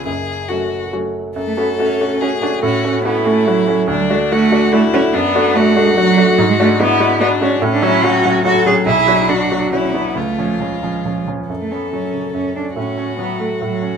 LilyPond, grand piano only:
\new Staff \with { instrumentName = "Grand piano" } { \time 3/4 \key fis \minor \tempo 4 = 143 <fis,, fis,>4 <a cis' fis'>4 <a cis' fis'>4 | fis,8 <a cis' fis'>8 <a cis' fis'>8 <a cis' fis'>8 <a cis' fis'>8 <a cis' fis'>8 | a,8 <a cis' fis'>8 <a cis' fis'>8 <a cis' fis'>8 <a cis' fis'>8 <a cis' fis'>8 | d,8 <a d' fis'>8 <a d' fis'>8 <a d' fis'>8 <a d' fis'>8 <a d' fis'>8 |
fis,8 <a d' fis'>8 <a d' fis'>8 <a d' fis'>8 <a d' fis'>8 <a d' fis'>8 | gis,8 <gis d' fis'>8 <gis d' fis'>8 <gis d' fis'>8 <gis d' fis'>8 <gis d' fis'>8 | a,8 <fis cis' fis'>8 <fis cis' fis'>8 <fis cis' fis'>8 <fis cis' fis'>8 <fis cis' fis'>8 | b,,8 <fis d' fis'>8 <fis d' fis'>8 <fis d' fis'>8 <fis d' fis'>8 <fis d' fis'>8 |
cis,8 <eis cis'>8 <eis cis'>8 <eis cis'>8 <eis cis'>8 <eis cis'>8 | fis,8 cis'8 fis8 cis8 fis,8 cis'8 | a,8 cis'8 fis8 a8 a,8 cis'8 | }